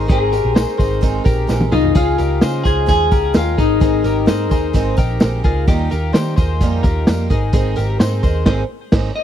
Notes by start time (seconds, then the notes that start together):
0.08 G#1 G#3 C4 D#4 G#4 A#4 G#5, kick, closed hi-hat
0.32 C4 D#4 G4 A#4, closed hi-hat, tambourine
0.45 A#1
0.54 G#3 C4 D#4 G#4 A#4 C5, snare, closed hi-hat, tambourine
0.77 G#1 C4 D#4 G#4 A#4 C5, kick, closed hi-hat, tambourine
1.01 G#3 C4 D#4 A#4, kick, closed hi-hat, tambourine
1.24 A#1 C4 D#4 G4 A#4, kick, closed hi-hat, tambourine
1.47 A#1 G#3 C4 D#4 A#4, snare, tambourine
1.60 high tom
1.71 C2 C4 D#4 F4 G#4 A#4 D#6, mid tom, tambourine
1.84 floor tom
1.95 C#2 C#3 G#3 C#4 D#4 F4 G#4 F6, kick, closed hi-hat, tambourine
2.18 C#2 C#4 D#4 F4 G4 A#4, closed hi-hat, tambourine
2.41 C#3 G#3 C#4 D#4 F4 G#4 C5, snare, closed hi-hat, tambourine
2.64 C#2 C#4 D#4 F4 G#4 C5 G#6, kick, closed hi-hat, tambourine
2.86 D#2 C#3 G#3 C#4 D#4 F4 G#4 G#6, kick, snare, closed hi-hat, tambourine
3.11 C#2 C#4 D#4 F4 G4 A#4, kick, closed hi-hat, tambourine
3.33 D#2 G#3 C#4 D#4 F4 F6, snare, closed hi-hat, tambourine
3.57 G#1 C4 D#4 G#4 A#4 D#6, kick, closed hi-hat, tambourine
3.80 G#1 G#3 C4 D#4 G#4 A#4, kick, closed hi-hat, tambourine
4.04 G#1 C4 D#4 G4 A#4, closed hi-hat, tambourine
4.26 G#2 G#3 C4 D#4 G#4 A#4 C5, snare, closed hi-hat, tambourine
4.49 D#2 C4 D#4 G#4 A#4 C5, kick, closed hi-hat, tambourine
4.73 G#1 G#3 C4 D#4 A#4, kick, snare, closed hi-hat, tambourine
4.97 A#1 C4 D#4 G4 A#4, kick, closed hi-hat, tambourine
5.20 A#1 G#3 C4 D#4 A#4, snare, closed hi-hat, tambourine
5.44 C#2 C4 D#4 F4 G#4 A#4, kick, closed hi-hat
5.67 D#2 D#3 G3 A#3 D#4 F4 G4, kick, closed hi-hat, tambourine
5.90 D#2 A#3 D#4 F4 G4 A#4, closed hi-hat, tambourine
6.13 D#3 G3 A#3 D#4 F4 G4 C5, snare, closed hi-hat, tambourine
6.36 D#2 D#4 F4 G#4 C5, kick, closed hi-hat, tambourine
6.41 A#3
6.60 F2 D#3 G3 A#3 D#4 F4, kick, snare, closed hi-hat, tambourine
6.83 D#2 A#3 D#4 F4 G4 A#4, kick, closed hi-hat, tambourine
7.07 F2 G3 A#3 D#4 F4, snare, closed hi-hat, tambourine
7.30 G#1 C4 D#4 G#4 A#4, kick, closed hi-hat
7.53 G#1 G#3 C4 D#4 G#4 A#4, kick, closed hi-hat, tambourine
7.76 G#1 D#4 G4 A#4, closed hi-hat, tambourine
7.80 C4
8.00 G#2 G#3 C4 D#4 G#4 C5, snare, closed hi-hat, tambourine
8.04 A#4
8.23 D#2 C4 D#4 G#4 A#4 C5, kick, closed hi-hat, tambourine
8.46 G#1 G#3 C4 D#4 G#4 A#4 C5, kick, snare, crash
8.92 G#1 G#3 C4 D#4 A#4, kick, snare, crash
9.16 D#5